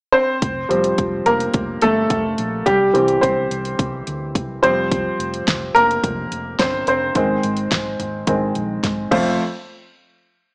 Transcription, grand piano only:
0.12 0.69 C4 medium
0.12 1.29 C5 medium
0.69 1.50 F3 soft
0.69 1.50 G3 soft
0.69 1.50 C4 soft
1.26 1.79 A#3 medium
1.26 1.78 A#4 medium
1.82 2.63 A3 medium
1.82 2.69 A4 medium
2.66 2.92 G3 medium
2.66 3.18 G4 medium
2.93 3.74 E3 soft
2.93 3.75 G3 soft
2.93 3.21 C4 soft
3.21 3.75 C4 medium
3.21 3.74 C5 medium
4.62 6.83 F3 soft
4.62 6.83 G3 soft
4.62 6.58 C4 medium
4.62 5.79 C5 medium
5.75 6.55 A#3 medium
5.75 6.62 A#4 loud
6.59 6.86 C4 medium
6.59 6.86 C5 medium
6.88 7.15 C4 medium
6.88 8.80 C5 medium
7.16 7.96 D#3 soft
7.16 7.96 G#3 soft
7.16 7.96 C4 medium
8.27 8.53 D#3 soft
8.27 8.53 G#3 soft
8.27 8.53 C4 soft
9.11 9.38 F2 medium
9.11 9.37 A3 medium
9.11 9.37 C4 medium
9.11 9.38 F4 medium
9.11 9.38 C5 medium

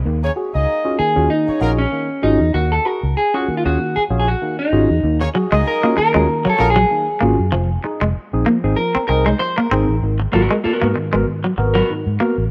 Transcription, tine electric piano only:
0.05 0.21 D#3 medium
0.05 0.21 A#3 medium
0.36 0.52 F#4 medium
0.36 0.52 G#4 medium
0.85 0.97 C#4 medium
0.85 0.97 F4 medium
0.85 0.97 F#4 medium
0.85 0.97 G#4 medium
0.99 1.14 D#3 medium
0.99 1.14 A#3 medium
1.16 1.28 C#4 medium
1.16 1.28 F4 medium
1.16 1.28 F#4 medium
1.16 1.28 G#4 medium
1.30 1.45 D#3 medium
1.30 1.45 A#3 medium
1.60 1.76 C#4 medium
1.60 1.76 F4 medium
1.60 1.76 F#4 medium
1.60 1.76 G#4 medium
1.79 1.84 F#4 soft
1.79 1.84 G#4 soft
1.92 2.08 D#3 medium
1.92 2.08 A#3 medium
2.22 2.38 C#4 medium
2.22 2.39 F4 medium
2.22 2.39 F#4 medium
2.22 2.39 G#4 medium
2.41 2.47 F#4 soft
2.41 2.47 G#4 soft
2.55 2.70 D#3 medium
2.55 2.70 A#3 medium
2.86 3.01 F#4 medium
2.86 3.01 G#4 medium
3.34 3.46 C#4 medium
3.34 3.47 F4 medium
3.34 3.47 F#4 medium
3.34 3.47 G#4 medium
3.48 3.64 D#3 medium
3.48 3.63 A#3 medium
3.65 3.78 C#4 medium
3.65 3.78 F4 medium
3.65 3.78 F#4 medium
3.65 3.78 G#4 medium
3.79 3.94 D#3 medium
3.79 3.95 A#3 medium
4.10 4.26 C#4 medium
4.10 4.26 F4 medium
4.10 4.26 F#4 medium
4.10 4.26 G#4 medium
4.42 4.57 D#3 medium
4.42 4.57 A#3 medium
4.72 4.88 C#4 medium
4.72 4.88 F4 medium
4.72 4.88 F#4 medium
4.72 4.88 G#4 medium
4.90 4.96 G#4 soft
5.04 5.19 D#3 medium
5.04 5.19 A#3 medium
5.34 5.50 F#4 medium
5.34 5.50 G#4 medium
5.84 5.96 C#4 medium
5.84 5.96 F4 medium
5.84 5.96 F#4 medium
5.84 5.96 G#4 medium
5.97 6.13 D#3 soft
5.97 6.13 A#3 medium
6.14 6.27 C#4 medium
6.14 6.27 F4 medium
6.14 6.27 F#4 medium
6.14 6.27 G#4 medium
6.29 6.44 D#3 medium
6.29 6.44 A#3 medium
6.59 6.75 C#4 medium
6.59 6.75 F4 medium
6.59 6.75 F#4 medium
6.59 6.75 G#4 medium
6.77 6.83 F#4 soft
6.77 6.83 G#4 soft
6.91 7.06 D#3 medium
6.91 7.06 A#3 medium
7.22 7.37 C#4 medium
7.22 7.37 F4 medium
7.22 7.37 F#4 medium
7.22 7.38 G#4 medium
7.40 7.45 F#4 soft
7.40 7.45 G#4 soft
7.54 7.69 F3 medium
7.84 8.00 D#4 medium
7.84 8.00 G#4 medium
8.33 8.45 C4 medium
8.33 8.45 D#4 medium
8.33 8.45 G#4 medium
8.47 8.62 F3 medium
8.64 8.76 C4 medium
8.64 8.76 D#4 medium
8.64 8.76 G#4 loud
8.78 8.93 F3 medium
9.09 9.24 C4 medium
9.09 9.24 D#4 medium
9.09 9.24 G#4 loud
9.27 9.32 D#4 soft
9.27 9.32 G#4 soft
9.41 9.56 F3 medium
9.72 9.87 C4 medium
9.72 9.87 D#4 medium
9.72 9.87 G#4 medium
9.89 9.94 G#4 soft
10.03 10.18 G#2 medium
10.03 10.18 D#3 medium
10.34 10.49 F#4 medium
10.34 10.49 A#4 medium
10.82 10.94 B3 medium
10.82 10.94 F#4 medium
10.82 10.94 A#4 medium
10.96 11.11 G#2 medium
10.96 11.11 D#3 medium
11.13 11.25 B3 medium
11.13 11.25 F#4 medium
11.13 11.25 A#4 medium
11.27 11.42 G#2 medium
11.27 11.42 D#3 medium
11.58 11.73 B3 medium
11.58 11.73 F#4 medium
11.58 11.73 A#4 medium
11.76 11.81 F#4 soft
11.76 11.81 A#4 soft
11.90 12.04 G#2 medium
11.90 12.04 D#3 medium
12.21 12.36 B3 medium
12.21 12.36 F#4 medium
12.21 12.36 A#4 medium
12.37 12.43 F#4 soft
12.37 12.43 A#4 soft

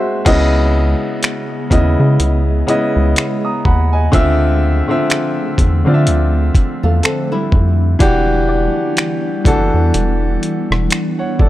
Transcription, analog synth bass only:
0.26 0.95 C#2 loud
1.71 1.96 D#2 loud
2.00 2.18 C#3 loud
2.20 2.63 C#2 medium
2.96 3.15 C#2 medium
3.65 4.09 D#2 medium
4.13 4.82 D2 loud
5.58 5.84 E2 medium
5.87 6.09 D3 loud
6.07 6.51 D2 medium
6.84 7.02 E2 medium
7.52 7.96 F2 loud
8.00 8.69 E1 loud
9.45 9.71 F#1 medium
9.74 9.92 E2 loud
9.94 10.38 E1 medium
10.71 10.89 E1 loud
11.40 11.49 G#1 medium

